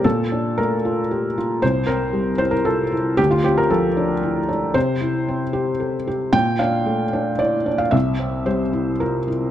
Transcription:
\new Staff \with { instrumentName = "Felt piano" } { \time 3/4 \key c \mixolydian \tempo 4 = 114 << { a'4 bes'4. r8 | c''8 bes'4 c''16 bes'16 a'4 | g'16 f'16 g'16 bes'16 a'4. r8 | c''2. |
g''8 f''4. d''8. f''16 | e''4 c''4 bes'4 | } \\ { bes,8 d'8 a8 f'8 g'8 f'8 | c,8 c'8 g8 e'8 f'8 e'8 | d,8 c'8 f8 d'8 e'8 d'8 | c8 e'8 c'8 g'8 a'8 g'8 |
bes,8 d'8 a8 d'8 e'8 d'8 | c,8 c'8 g8 e'8 f'8 e'8 | } >> }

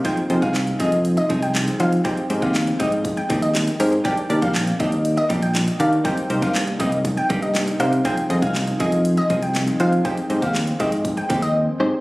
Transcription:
<<
  \new Staff \with { instrumentName = "Synth pluck" } { \time 4/4 \key f \dorian \tempo 4 = 120 g''16 r8 f''16 r8 ees''8 r16 ees''16 r16 g''16 r8 f''16 r16 | g''16 r8 f''16 r8 ees''8 r16 g''16 r16 ees''16 r8 c''16 r16 | g''16 r8 f''16 r8 ees''8 r16 ees''16 r16 g''16 r8 f''16 r16 | g''16 r8 f''16 r8 ees''8 r16 g''16 r16 ees''16 r8 f''16 r16 |
g''16 r8 f''16 r8 ees''8 r16 ees''16 r16 g''16 r8 f''16 r16 | g''16 r8 f''16 r8 ees''8 r16 g''16 r16 ees''16 r8 c''16 r16 | }
  \new Staff \with { instrumentName = "Synth pluck" } { \time 4/4 \key f \dorian <c' ees' f' aes' c''>8 <c' ees' f' aes' c''>4. r4. <c' ees' f' aes' c''>8 | <c' ees' g' aes' c''>8 <c' ees' g' aes' c''>4. r4. <c' ees' g' aes' bes'>8 | <d' ees' g' bes' d''>8 <d' ees' g' bes' d''>4. r4. <d' ees' g' bes' d''>8 | <c' ees' g' bes' c''>8 <c' ees' g' bes' c''>4. r4. <c' ees' g' bes' c''>8 |
<c' ees' f' aes' c''>8 <c' ees' f' aes' ees''>4. r4. <c' ees' f' aes' c''>8 | <c' ees' g' aes' c''>8 <c' ees' g' aes' c''>4. r4. <c' ees' g' aes' c''>8 | }
  \new Staff \with { instrumentName = "Ambient pad" } { \time 4/4 \key f \dorian << { <f c'>1 | aes1 | <ees bes d''>1 | <c g>1 |
<f c'>1 | aes1 | } \\ { <ees' aes'>1 | g''1~ | g''1 | ees'1 |
aes'1 | g''1 | } >> }
  \new Staff \with { instrumentName = "Clean electric guitar" } { \time 4/4 \key f \dorian <f c' ees' aes'>16 r8 <f c' ees' aes'>16 r8 <f c' ees' aes'>16 r8. <f c' ees' aes'>16 r4 r16 | <g c' ees' g'>16 r8 <g c' ees' g'>16 r8 <g c' ees' g'>16 r8. <g c' ees' g'>16 r4 r16 | <g bes d' g'>16 r8 <g bes d' g'>16 r8 <g bes d' g'>16 r8. <g bes d' g'>16 r4 r16 | <g bes ees' g'>16 r8 <g bes ees' g'>16 r8 <g bes ees' g'>16 r8. <g bes ees' g'>16 r4 r16 |
<f c' ees' aes'>16 r8 <f c' ees' aes'>16 r8 <f c' ees' aes'>16 r8. <f c' ees' aes'>16 r4 r16 | <ees aes c' g'>16 r8 <ees aes c' g'>16 r8 <ees aes c' g'>16 r8. <ees aes c' g'>16 r4 r16 | }
  \new Staff \with { instrumentName = "Fingered electric bass" } { \clef bass \time 4/4 \key f \dorian r8 f,16 r8. f,4 c,4 f8 | r8 aes,16 ees,8. aes,4 ees,4 aes,8 | r8 ees,16 bes,,8. ees,4 bes,,4 ees8 | r8 c,16 g,8. c,4 g,4 c8 |
r8 f,16 c,8. f,4 c,4 f8 | r8 aes,16 ees,8. aes,4 ees,4 aes,16 r16 | }
  \new DrumStaff \with { instrumentName = "Drums" } \drummode { \time 4/4 <hh bd>16 hh16 hh16 <hh bd>16 <hc hh sn>16 hh16 <hh bd>16 hh16 hh16 hh16 <hh bd>16 hh16 <hc hh sn>16 hh16 hh16 hh16 | <hh bd>16 hh16 hh16 <hh bd>16 <hc hh sn>16 hh16 <hh bd>16 hh16 <hh bd>16 hh16 <hh bd>16 hh16 <hc hh sn>16 hh16 hho16 hh16 | <hh bd>16 hh16 hh16 <hh bd>16 <hc hh sn>16 hh16 <hh bd>16 hh16 hh16 hh16 <hh bd>16 hh16 <hc hh sn>16 hh16 hh16 hh16 | <hh bd>16 hh16 hh16 <hh bd>16 <hc hh sn>16 hh16 <hh bd>16 hh16 <hh bd>16 hh16 <hh bd>16 hh16 <hc hh sn>16 hh16 hh16 hh16 |
<hh bd>16 hh16 hh16 <hh bd>16 <hc hh sn>16 hh16 <hh bd>16 hh16 hh16 hh16 <hh bd>16 hh16 <hc hh sn>16 hh16 hh16 hh16 | <hh bd>16 hh16 hh16 <hh bd>16 <hc hh sn>16 hh16 <hh bd>16 hh16 <hh bd>16 hh16 <hh bd>16 hh16 r4 | }
>>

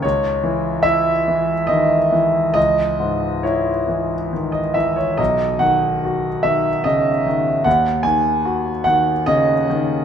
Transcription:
<<
  \new Staff \with { instrumentName = "Grand piano" } { \time 3/4 \key cis \dorian \tempo 4 = 73 cis''4 e''4 dis''4 | dis''4 cis''4 r16 dis''16 e''16 cis''16 | dis''8 fis''4 e''8 dis''4 | fis''8 gis''4 fis''8 dis''4 | }
  \new Staff \with { instrumentName = "Grand piano" } { \clef bass \time 3/4 \key cis \dorian cis,8 e8 e'8 e8 dis8 e8 | cis,8 gis,8 e'8 e8 dis8 e8 | b,,8 dis8 fis'8 dis8 cis8 dis8 | dis,8 dis8 fis'8 dis8 cis8 dis8 | }
>>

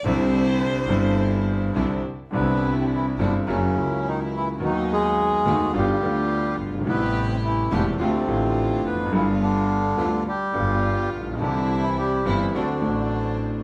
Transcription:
<<
  \new Staff \with { instrumentName = "Violin" } { \time 4/4 \key c \major \tempo 4 = 106 c''2. r4 | r1 | r1 | r1 |
r1 | r1 | }
  \new Staff \with { instrumentName = "String section" } { \time 4/4 \key c \major <c' d' e'>4. <c' d' e'>4. <c' d' e'>8 r8 | <g d' e'>4. <c' d' e'>8 <fis ais e'>8 <fis ais e'>4. | <fis b dis'>4. <a b dis'>8 <g b f'>8 <g b f'>4. | <a e' g'>4. <a c' g'>8 <a d' f'>8 <a d' f'>4. |
<g b f'>4. <g b f'>8 r8 <g b f'>4. | <g c' e'>4. <g c' e'>8 <fis c' d'>8 <fis c' d'>4. | }
  \new Staff \with { instrumentName = "Bandoneon" } { \time 4/4 \key c \major r1 | <b b'>8. <c c'>16 <e e'>8 <d d'>8 <cis cis'>4 <ees ees'>8 <e e'>8 | <dis dis'>8 <aes aes'>4. <g g'>4. r8 | <b b'>8. <c c'>16 <e e'>8 <d d'>8 <c c'>4. <b b'>8 |
<e e'>8 <d d'>4. <g g'>4. r8 | <d d'>8. <e e'>16 <g g'>8 <e e'>8 <d d'>4. r8 | }
  \new Staff \with { instrumentName = "Grand piano" } { \clef bass \time 4/4 \key c \major << { <c, c d g c' e'>4. <g,, g, d g c' e'>4. <c, c d g c' e'>8 r8 | <c, c d g d' e'>4. <g,, g, d g c' e'>8 <fis, cis fis ais e'>8 <cis, cis fis ais e'>4. | <dis, dis fis b fis'>4. <dis, dis a b fis'>8 <g,, g, d g b f'>8 <d, d g b f'>4. | <a,, a, c g a e'>4. <e,, e, c g a e'>8 <d, d f a f'>8 <a,, a, d f a f'>4. |
<g,, g, d g b f'>4. <d, d g b f'>8 r8 <g,, g, d g b f'>4. | <c, c e g c' g'>4. <g,, g, e g c' g'>8 <d, d a c' fis'>8 <a,, a, d a c' fis'>4. | } \\ { r1 | r1 | r2. r8 r32 fis,,32 g,,32 aes,,32 | r2. r8 r32 e,32 f,32 fis,32 |
r2. r8 r32 a,,32 bes,,32 b,,32 | r1 | } >> }
  \new Staff \with { instrumentName = "Double bass" } { \clef bass \time 4/4 \key c \major c,4. g,,4. c,8 r8 | c,4. g,,8 fis,,8 cis,4. | dis,4. dis,8 g,,8 d,4 g,,8 | a,,4. e,,8 d,8 a,,4 f,,8 |
g,,4. d,8 r8 g,,4 bes,,8 | c,4. g,,8 d,8 a,,4. | }
>>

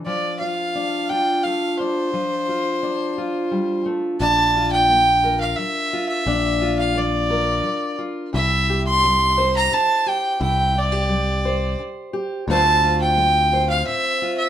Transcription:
<<
  \new Staff \with { instrumentName = "Fiddle" } { \time 3/4 \key bes \lydian \tempo 4 = 87 d''8 f''4 g''8 f''8 c''8~ | c''2~ c''8 r8 | a''8. g''4 f''16 e''8. e''16~ | e''8. f''16 d''4. r8 |
e''8. c'''4 bes''16 a''8 g''8 | g''8 d''4. r4 | a''8. g''4 f''16 e''8. e''16 | }
  \new Staff \with { instrumentName = "Steel-string acoustic guitar" } { \time 3/4 \key bes \lydian << { r8 f'8 d'8 f'4 d'8 | r8 f'8 d'8 f'4. | d'8 f'4 bes'4 f'8 | d'8 f'4 bes'4 f'8 |
e'8 g'4 c''4 g'8 | e'8 e'16 g'8. c''4 g'8 | <a c' f' c''>8 f'4 c''4 f'8 | } \\ { f2 a4 | f2 g8 a8 | bes,4 bes4 f4 | bes,4 bes4 f4 |
c4 g4 c4 | c4 g4 c4 | d4 a4 a,4 | } >> }
  \new Staff \with { instrumentName = "Picked electric bass" } { \clef bass \time 3/4 \key bes \lydian r2. | r2. | bes,,2 r4 | bes,,2 r4 |
c,2 r4 | c,2 r4 | d,2 r4 | }
>>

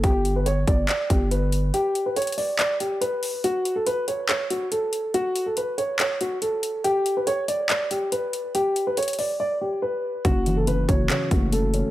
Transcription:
<<
  \new Staff \with { instrumentName = "Grand piano" } { \time 4/4 \key g \lydian \tempo 4 = 141 g'8. b'16 cis''8 d''8 d''8 g'8 b'4 | g'8. b'16 cis''8 d''8 d''8 g'8 b'4 | fis'8. a'16 b'8 cis''8 cis''8 fis'8 a'4 | fis'8. a'16 b'8 cis''8 cis''8 fis'8 a'4 |
g'8. b'16 cis''8 d''8 d''8 g'8 b'4 | g'8. b'16 cis''8 d''8 d''8 g'8 b'4 | fis'8. a'16 b'8 cis''8 cis''8 fis'8 a'4 | }
  \new Staff \with { instrumentName = "Felt piano" } { \clef bass \time 4/4 \key g \lydian r1 | r1 | r1 | r1 |
r1 | r1 | cis8 e8 cis8 fis8 cis8 a8 cis8 cis'8 | }
  \new Staff \with { instrumentName = "808-style bass" } { \clef bass \time 4/4 \key g \lydian g,,4. g,,8 r8 g,,4. | r1 | r1 | r1 |
r1 | r1 | fis,,4. fis,,8 r8 fis,,4~ fis,,16 r16 | }
  \new DrumStaff \with { instrumentName = "Drums" } \drummode { \time 4/4 <hh bd>8 hh8 hh8 <hh bd>8 <hc hh>8 <hh bd>8 hh8 hh8 | hh8 hh8 hh32 hh32 hh32 hh32 hho8 <hc hh>8 hh8 hh8 hho8 | hh8 hh8 hh8 hh8 <hc hh>8 hh8 hh8 hh8 | hh8 hh8 hh8 hh8 <hc hh>8 hh8 hh8 hh8 |
hh8 hh8 hh8 hh8 <hc hh>8 hh8 hh8 hh8 | hh8 hh8 hh32 hh32 hh32 hh32 hho8 r4 r4 | <hh bd>8 hh8 hh8 <hh bd>8 <hc hh>8 <hh bd>8 hh8 hh8 | }
>>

